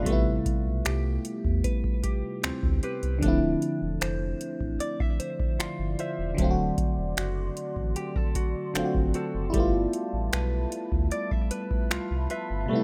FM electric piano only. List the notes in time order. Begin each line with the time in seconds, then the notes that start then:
Already playing: F4
0.03 C3 G3
0.07 A3 B3
0.12 E4
3.19 D3 F3
3.23 A3 C4
3.28 E4
6.34 D3 F#3
6.39 A3 C4
6.44 F4
6.51 F#4
8.74 D3 F#3 A3 C4
8.79 F4
8.85 F#4
9.50 G3 E4
9.55 A3 B3
9.60 F4
12.66 B2 G3
12.71 C3 A3 B3
12.75 E4